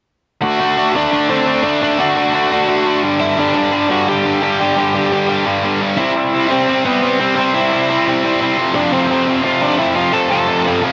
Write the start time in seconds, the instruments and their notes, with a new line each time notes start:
0.42 distorted electric guitar D3 A3 D4, lead electric guitar F#4 F#5
0.59 distorted electric guitar D3 A3 D4
0.77 distorted electric guitar D3 A3 D4
0.94 distorted electric guitar D3 A3 D4, lead electric guitar D4 D5
1.12 distorted electric guitar D3 A3 D4
1.29 distorted electric guitar D3 A3 D4, lead electric guitar C4 C5
1.47 distorted electric guitar D3 A3 D4
1.64 distorted electric guitar D3 A3 D4, lead electric guitar D4 D5
1.81 distorted electric guitar D3 A3 D4, lead electric guitar D4 D5
1.98 distorted electric guitar D3 A3 D4, lead electric guitar F#4 F#5
2.16 distorted electric guitar D3 A3 D4
2.34 distorted electric guitar D3 A3 D4
2.51 distorted electric guitar D3 A3 D4
2.68 distorted electric guitar D3 A3 D4
2.86 distorted electric guitar D3 A3 D4
3.03 distorted electric guitar G2 D3 G3
3.20 distorted electric guitar G2 D3 G3, lead electric guitar E4 E5
3.38 distorted electric guitar G2 D3 G3, lead electric guitar D4 D5
3.55 distorted electric guitar G2 D3 G3
3.72 distorted electric guitar G2 D3 G3
3.89 distorted electric guitar G2 D3 G3, lead electric guitar F#4 F#5
4.08 distorted electric guitar G2 D3 G3, lead electric guitar G4 G5
4.24 distorted electric guitar G2 D3 G3
4.42 distorted electric guitar G2 D3 G3, lead electric guitar G4 G5
4.60 distorted electric guitar G2 D3 G3
4.77 distorted electric guitar G2 D3 G3
4.94 distorted electric guitar G2 D3 G3
5.11 distorted electric guitar G2 D3 G3
5.29 distorted electric guitar G2 D3 G3
5.46 distorted electric guitar G2 D3 G3
5.64 distorted electric guitar G2 D3 G3
5.82 distorted electric guitar G2 D3 G3
5.97 distorted electric guitar C3 G3 C4, lead electric guitar E4 E5
6.16 distorted electric guitar C3 G3 C4
6.33 distorted electric guitar C3 G3 C4
6.51 distorted electric guitar C3 G3 C4, lead electric guitar C4 C5
6.68 distorted electric guitar C3 G3 C4
6.85 distorted electric guitar C3 G3 C4, lead electric guitar B3 B4
7.02 distorted electric guitar C3 G3 C4
7.20 distorted electric guitar C3 G3 C4, lead electric guitar C4 C5
7.36 distorted electric guitar C3 G3 C4, lead electric guitar C4 C5
7.54 distorted electric guitar C3 G3 C4, lead electric guitar E4 E5
7.72 distorted electric guitar C3 G3 C4
7.89 distorted electric guitar C3 G3 C4
8.07 distorted electric guitar C3 G3 C4
8.24 distorted electric guitar C3 G3 C4
8.40 distorted electric guitar C3 G3 C4
8.57 distorted electric guitar F2 C3 F3
8.75 distorted electric guitar F2 C3 F3, lead electric guitar D4 D5
8.91 distorted electric guitar F2 C3 F3, lead electric guitar C4 C5
9.09 distorted electric guitar F2 C3 F3
9.26 distorted electric guitar F2 C3 F3
9.44 distorted electric guitar F2 C3 F3, lead electric guitar F4 F5
9.61 distorted electric guitar F2 C3 F3, lead electric guitar D4 D5
9.78 distorted electric guitar F2 C3 F3, lead electric guitar E4 E5
9.95 distorted electric guitar F2 C3 F3, lead electric guitar F4 F5
10.13 distorted electric guitar F2 C3 F3, lead electric guitar A4 A5
10.31 distorted electric guitar F2 C3 F3, lead electric guitar A4 A5
10.48 distorted electric guitar F2 C3 F3
10.66 distorted electric guitar F2 C3 F3
10.83 distorted electric guitar F2 C3 F3